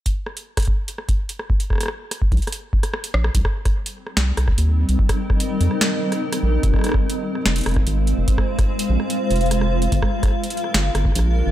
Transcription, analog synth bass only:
\new Staff \with { instrumentName = "Analog synth bass" } { \clef bass \time 4/4 \key c \minor \tempo 4 = 146 r1 | r4. c,16 r4. r16 bes,,8 | c,16 r4. r16 c,8 c,8 ees,8. c,16 | r4. f,16 r4. r16 bes,,8 |
f,,16 r4. r16 f,,8 f,,8 aes,,8. f,,16 | r4. bes,,16 r8. f,,4. | g,,16 r4. r16 g,,8 g,,8 bes,,8. g,,16 | }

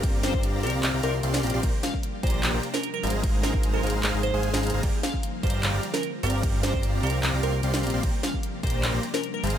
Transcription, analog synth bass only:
\new Staff \with { instrumentName = "Analog synth bass" } { \clef bass \time 4/4 \key g \phrygian \tempo 4 = 150 g,,4. c,8 c,16 c,16 c,8 c,8 bes,,16 bes,,16 | bes,,16 r4 r16 bes,,8 bes,,16 bes,,16 r4 aes,,8~ | aes,,4. aes,,8 aes,,16 aes,,8 aes,,8 aes,,8 aes,,16 | g,,16 r4 r16 g,,8 g,,16 g,,16 r4 g,,8~ |
g,,4. c,8 c,16 c,16 c,8 c,8 bes,,16 bes,,16 | bes,,16 r4 r16 bes,,8 bes,,16 bes,,16 r4 aes,,8 | }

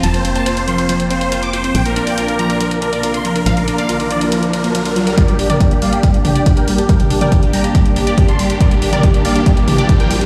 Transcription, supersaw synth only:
\new Staff \with { instrumentName = "Supersaw synth" } { \time 4/4 \key g \minor \tempo 4 = 140 a''16 c''16 c''16 a''16 c''16 c''16 c'''16 c''16 c''16 r16 c''16 c''16 c''16 d'''16 c''16 c''16 | g''16 bes'16 bes'16 g''16 bes'16 bes'16 bes''16 bes'16 bes'16 r16 bes'16 bes'16 bes'16 c'''16 bes'16 bes'16 | f''16 bes'16 bes'16 f''16 bes'16 bes'16 d''16 bes'16 bes'16 r16 bes'16 bes'16 bes'16 bes'16 bes'16 bes'16 | <bes' d''>16 g'16 g'16 <bes' d''>16 g'16 g'16 <d'' f''>16 g'16 g'16 r16 g'16 g'16 g'16 <bes' g''>16 g'16 g'16 |
<bes' g''>16 g'16 g'16 <bes' g''>16 g'16 g'16 <g'' bes''>16 g'16 g'16 r16 g'16 g'16 g'16 <a'' c'''>16 g'16 g'16 | <bes' d''>16 g'16 g'16 <bes' d''>16 g'16 g'16 <d'' f''>16 g'16 g'16 r16 g'16 g'16 g'16 <bes' g''>16 g'16 g'16 | }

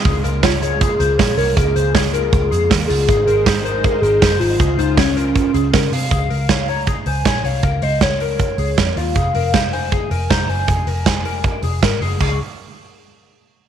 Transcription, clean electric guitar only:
\new Staff \with { instrumentName = "Clean electric guitar" } { \time 4/4 \key des \major \tempo 4 = 158 aes'8 bes'8 des''8 des''8 aes'8 c''8 des''8 des''8 | bes'8 c''8 des''8 bes'4 aes'8 bes'8 f'8 | aes'8 bes'8 c''8 c''8 aes'8 bes'8 c''8 c''8 | aes'8 c''8 des''8 bes'4 aes'8 bes'8 aes'8 |
aes'8 bes'8 des''8 des''8 aes'8 c''8 des''8 des''8 | bes'8 c''8 des''8 bes'4 aes'8 bes'8 f'8 | aes'8 bes'8 c''8 c''8 aes'8 bes'8 c''8 c''8 | aes'8 bes'8 c''8 bes'4 aes'8 bes'8 aes'8 |
aes'8 r2. r8 | }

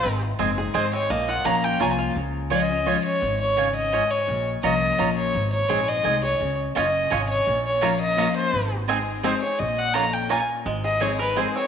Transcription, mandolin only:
\new Staff \with { instrumentName = "Mandolin" } { \time 3/4 \key des \major \tempo 4 = 170 r4 <c' aes' ees'' aes''>16 r8. <c' aes' ees'' aes''>16 r8. | r4 <des' f' des'' bes''>16 r8. <des' f' des'' bes''>16 r8. | r4 <des' f' des'' aes''>16 r8. <des' f' des'' aes''>16 r8. | r4 <des' f' des'' aes''>16 r8. <des' f' des'' aes''>16 r8. |
r4 <des' f' des'' bes''>16 r8. <des' f' des'' bes''>16 r8. | r4 <c' aes' ees'' aes''>16 r8. <c' aes' ees'' aes''>16 r8. | r4 <des' f' des'' aes''>16 r8. <des' f' des'' aes''>16 r8. | r4 <des' f' des'' bes''>16 r8. <des' f' des'' bes''>16 r8. |
r4 <c' aes' ees'' aes''>16 r8. <c' aes' ees'' aes''>16 r8. | r4 <des' f' des'' bes''>16 r8. <des' f' des'' bes''>16 r8. | r4 <c' aes' ees'' aes''>16 r8. <c' aes' ees'' aes''>16 r8. | }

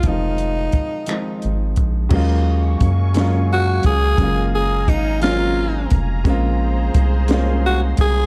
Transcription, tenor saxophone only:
\new Staff \with { instrumentName = "Tenor saxophone" } { \time 6/8 \key ees \dorian \tempo 4. = 58 ees'2~ ees'8 r8 | r2 ges'8 aes'8~ | aes'8 aes'8 ees'8 f'4 r8 | r2 ges'8 aes'8 | }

